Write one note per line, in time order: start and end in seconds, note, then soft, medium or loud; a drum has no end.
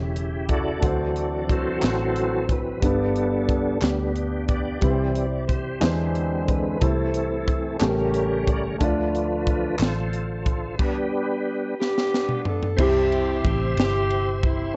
0.00 0.79 E1 medium
0.00 0.79 C#3 medium
0.00 0.85 C#3 soft
0.00 0.78 A3 soft
0.00 0.78 C#4 soft
0.00 0.79 E4 medium
0.00 0.79 E4 soft
0.00 0.51 G4 medium
0.00 0.80 C#5 medium
0.16 closed hi-hat soft
0.49 1.45 F#4 medium
0.49 1.45 A4 medium
0.49 1.52 D5 medium
0.49 kick medium
0.49 closed hi-hat soft
0.79 1.79 D2 medium
0.79 1.78 D3 soft
0.79 2.49 E3 soft
0.79 2.50 F#3 soft
0.79 2.77 A3 soft
0.79 2.78 D4 soft
0.79 2.78 F#4 soft
0.79 kick medium
0.79 closed hi-hat medium
0.84 2.50 C4 soft
0.84 2.80 C5 medium
1.16 closed hi-hat soft
1.50 2.45 F#4 medium
1.50 2.46 A4 medium
1.50 2.52 C5 loud
1.50 kick medium
1.50 closed hi-hat soft
1.82 2.79 A1 medium
1.82 snare medium
1.82 clap medium
1.82 closed hi-hat medium
2.16 closed hi-hat soft
2.49 2.80 E3 soft
2.49 2.80 F#3 soft
2.49 2.80 C4 medium
2.49 2.84 B4 medium
2.49 kick medium
2.49 closed hi-hat soft
2.80 3.78 G1 medium
2.80 3.78 G2 soft
2.80 3.78 D3 soft
2.80 4.77 G3 soft
2.80 3.78 G3 soft
2.80 4.78 B3 soft
2.80 3.78 B3 soft
2.80 3.79 D4 medium
2.80 4.79 D4 soft
2.80 3.85 A4 medium
2.80 kick medium
2.80 closed hi-hat medium
2.86 4.80 B4 medium
3.16 closed hi-hat soft
3.49 kick medium
3.49 closed hi-hat soft
3.81 4.78 D2 medium
3.81 4.12 D3 soft
3.81 4.12 G3 soft
3.81 4.78 B3 soft
3.81 4.79 D4 medium
3.81 4.45 G4 medium
3.81 snare loud
3.81 clap medium
3.81 closed hi-hat medium
4.15 closed hi-hat soft
4.48 5.45 G4 medium
4.48 5.45 D5 medium
4.48 kick medium
4.48 closed hi-hat soft
4.81 5.78 C2 medium
4.81 5.78 C3 soft
4.81 5.26 E3 soft
4.81 5.81 G3 medium
4.81 5.26 G3 soft
4.81 5.82 C4 soft
4.81 5.27 C4 soft
4.81 5.80 E4 soft
4.81 4.89 B4 soft
4.81 kick medium
4.81 closed hi-hat medium
4.90 5.82 C5 medium
5.16 closed hi-hat soft
5.48 6.44 G4 medium
5.48 6.51 C5 medium
5.48 kick medium
5.48 closed hi-hat soft
5.80 6.77 E2 medium
5.80 6.77 D3 soft
5.80 6.77 E3 medium
5.80 6.81 G#3 medium
5.80 6.78 G#3 soft
5.80 6.78 C4 soft
5.80 6.81 D4 soft
5.80 6.81 E4 medium
5.80 6.81 C5 medium
5.80 snare medium
5.80 clap medium
5.80 closed hi-hat medium
6.15 closed hi-hat soft
6.48 6.83 B4 medium
6.48 kick medium
6.48 closed hi-hat soft
6.80 7.77 C2 medium
6.80 7.77 C3 soft
6.80 7.77 E3 soft
6.80 7.78 A3 medium
6.80 7.77 A3 soft
6.80 7.81 C4 soft
6.80 7.77 C4 soft
6.80 7.77 E4 medium
6.80 7.81 E4 soft
6.80 7.77 A4 medium
6.80 7.82 C5 medium
6.80 kick medium
6.80 closed hi-hat medium
7.14 closed hi-hat soft
7.48 kick medium
7.48 closed hi-hat soft
7.79 8.77 A1 medium
7.79 8.76 A2 medium
7.79 8.77 C#3 soft
7.79 8.76 G3 soft
7.79 8.77 A3 medium
7.79 8.80 C#4 medium
7.79 8.81 G4 medium
7.79 8.50 G4 medium
7.79 7.88 A4 soft
7.79 8.77 A#4 soft
7.79 8.77 C#5 medium
7.79 snare medium
7.79 clap medium
7.79 closed hi-hat medium
7.89 8.84 A#4 medium
8.14 closed hi-hat soft
8.47 8.64 D5 medium
8.47 kick medium
8.47 closed hi-hat soft
8.78 9.76 D2 medium
8.78 9.77 D3 medium
8.78 9.76 F3 soft
8.78 10.74 A3 medium
8.78 9.76 A3 soft
8.78 10.76 D4 soft
8.78 9.77 D4 soft
8.78 9.77 F4 soft
8.78 10.76 F4 soft
8.78 9.83 B4 medium
8.78 kick medium
8.78 closed hi-hat medium
8.84 10.77 D5 medium
9.15 closed hi-hat soft
9.47 kick medium
9.47 closed hi-hat soft
9.79 10.75 A1 medium
9.79 10.75 F4 medium
9.79 10.76 A4 medium
9.79 10.83 C5 medium
9.79 snare loud
9.79 clap medium
9.79 closed hi-hat medium
10.13 closed hi-hat soft
10.46 kick medium
10.46 closed hi-hat soft
10.79 11.74 G3 soft
10.79 11.75 B3 soft
10.79 11.75 D4 soft
10.79 12.41 G4 soft
10.79 12.41 B4 medium
10.79 kick medium
10.79 crash medium
11.80 12.75 B3 medium
11.80 12.74 D4 medium
11.80 12.42 G4 medium
11.80 snare medium
11.98 snare medium
12.14 snare medium
12.29 mid tom medium
12.45 12.79 A4 medium
12.45 floor tom medium
12.62 floor tom medium
12.76 13.40 C2 medium
12.76 13.74 C3 medium
12.76 14.72 C4 medium
12.76 14.73 E4 medium
12.76 14.74 G4 medium
12.76 14.74 C5 medium
12.76 14.76 E5 medium
12.76 14.74 C6 medium
12.76 kick loud
12.76 crash medium
12.80 13.75 C4 medium
12.80 13.75 E4 medium
12.80 13.45 G4 loud
12.80 14.75 G4 medium
13.12 ride soft
13.45 13.75 A1 medium
13.45 13.77 G4 medium
13.45 kick medium
13.45 ride soft
13.76 14.72 G1 medium
13.76 14.73 C4 medium
13.76 14.41 G4 loud
13.76 ride medium
13.80 14.44 E4 medium
13.80 snare loud
14.11 ride soft
14.43 14.76 E4 medium
14.43 kick medium
14.43 ride soft